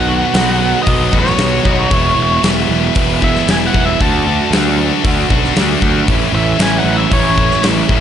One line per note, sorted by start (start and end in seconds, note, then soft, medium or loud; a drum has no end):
0.00 0.22 B1 medium
0.00 0.35 B2 medium
0.00 0.33 D#3 medium
0.00 0.33 F#3 medium
0.00 0.35 B3 loud
0.00 0.35 F#4 loud
0.00 0.89 F#5 medium
0.08 0.34 F#3 medium
0.08 0.36 B3 medium
0.08 0.36 F#4 medium
0.34 0.73 B1 medium
0.34 0.86 D#3 medium
0.34 0.86 F#3 medium
0.34 0.87 B3 medium
0.34 1.64 D#4 medium
0.34 0.88 F#4 medium
0.34 snare loud
0.34 open hi-hat medium
0.62 1.12 B3 medium
0.83 1.39 B2 medium
0.83 1.19 D#5 medium
0.83 open hi-hat medium
0.87 1.07 B1 medium
0.87 1.37 D#3 medium
0.87 1.13 F#3 medium
0.87 1.12 B3 loud
0.87 1.10 F#4 medium
0.87 kick loud
1.12 1.33 A1 medium
1.12 1.38 F#3 medium
1.12 1.38 B3 medium
1.12 1.39 F#4 medium
1.12 kick medium
1.20 2.47 C#5 medium
1.26 snare soft
1.37 1.58 B1 medium
1.37 1.89 B2 loud
1.37 1.88 D#3 medium
1.37 1.65 F#3 medium
1.37 1.63 B3 medium
1.37 1.62 F#4 medium
1.37 snare loud
1.37 open hi-hat medium
1.63 1.85 B1 medium
1.63 1.90 F#3 medium
1.63 1.90 B3 medium
1.63 1.92 D#4 medium
1.63 1.89 F#4 medium
1.63 kick medium
1.89 2.11 E1 medium
1.89 2.40 E3 medium
1.89 2.17 G#3 medium
1.89 2.16 B3 loud
1.89 2.14 E4 loud
1.89 kick loud
1.89 open hi-hat medium
2.16 2.37 E1 medium
2.16 2.42 G#3 medium
2.16 2.42 B3 medium
2.16 2.43 E4 medium
2.42 2.63 E1 medium
2.42 2.93 E3 medium
2.42 2.94 G#3 medium
2.42 2.95 B3 medium
2.42 2.96 E4 medium
2.42 snare loud
2.42 open hi-hat medium
2.69 2.89 E1 medium
2.94 3.35 E1 medium
2.94 3.47 E3 medium
2.94 3.23 G#3 medium
2.94 3.22 B3 loud
2.94 3.21 E4 medium
2.94 kick loud
2.94 open hi-hat medium
3.22 3.48 G#3 medium
3.22 3.49 B3 medium
3.22 3.49 E4 medium
3.22 3.48 E5 medium
3.22 kick medium
3.36 snare soft
3.48 3.68 E1 loud
3.48 3.99 E3 medium
3.48 3.75 G#3 medium
3.48 3.74 B3 medium
3.48 3.73 E4 medium
3.48 3.56 G#5 medium
3.48 snare loud
3.48 open hi-hat medium
3.67 3.85 F#5 medium
3.74 3.93 E1 loud
3.74 4.00 G#3 medium
3.74 3.99 B3 medium
3.74 3.99 E4 medium
3.74 kick medium
3.85 4.02 E5 medium
4.00 4.39 D2 medium
4.00 4.52 D3 medium
4.00 4.28 A3 medium
4.00 4.26 D4 loud
4.00 4.25 F#4 loud
4.00 4.50 A5 medium
4.00 kick loud
4.00 open hi-hat soft
4.26 4.54 A3 medium
4.26 4.53 D4 medium
4.26 4.54 F#4 medium
4.51 4.90 D2 medium
4.51 5.03 D3 medium
4.51 5.04 A3 medium
4.51 5.05 D4 medium
4.51 snare loud
4.51 open hi-hat medium
4.55 5.06 F#4 medium
5.04 5.24 D2 loud
5.04 5.55 D3 medium
5.04 5.31 A3 loud
5.04 5.31 D4 medium
5.04 5.29 F#4 loud
5.04 kick loud
5.04 open hi-hat medium
5.30 5.50 B1 medium
5.30 5.56 A3 medium
5.30 5.57 D4 medium
5.30 5.58 F#4 medium
5.30 kick medium
5.44 snare soft
5.55 5.75 D2 medium
5.55 6.07 D3 medium
5.55 5.83 A3 medium
5.55 5.82 D4 medium
5.55 snare loud
5.55 open hi-hat medium
5.59 5.80 F#4 medium
5.81 6.01 D2 loud
5.81 6.08 A3 medium
5.81 6.07 D4 medium
5.81 6.06 F#4 medium
5.81 kick medium
6.08 6.28 A1 medium
6.08 6.60 A2 loud
6.08 6.58 E3 loud
6.08 6.35 A3 medium
6.08 6.33 C#4 loud
6.08 6.32 E4 loud
6.08 kick loud
6.08 open hi-hat medium
6.33 6.53 A1 medium
6.33 6.59 A3 medium
6.33 6.59 C#4 medium
6.33 6.60 E4 medium
6.33 6.59 E5 medium
6.59 6.79 A1 medium
6.59 7.11 E3 medium
6.59 7.11 A3 medium
6.59 7.12 C#4 medium
6.59 7.13 E4 medium
6.59 6.79 G#5 loud
6.59 snare loud
6.59 open hi-hat medium
6.79 6.97 F#5 medium
6.84 7.04 A1 medium
6.97 7.13 E5 medium
7.11 7.50 A1 medium
7.11 7.64 A2 medium
7.11 7.61 E3 medium
7.11 7.38 A3 loud
7.11 7.37 C#4 loud
7.11 7.35 E4 loud
7.11 7.64 C#5 medium
7.11 kick loud
7.11 open hi-hat medium
7.36 7.63 A3 medium
7.36 7.63 C#4 medium
7.36 7.64 E4 medium
7.36 kick medium
7.51 snare soft
7.62 7.82 A1 medium
7.62 8.00 A2 medium
7.62 8.00 E3 medium
7.62 7.91 A3 medium
7.62 7.90 C#4 medium
7.62 7.89 E4 medium
7.62 snare loud
7.62 open hi-hat medium
7.89 8.00 A1 loud
7.89 8.00 A3 medium
7.89 8.00 C#4 medium
7.89 8.00 E4 medium
7.89 kick medium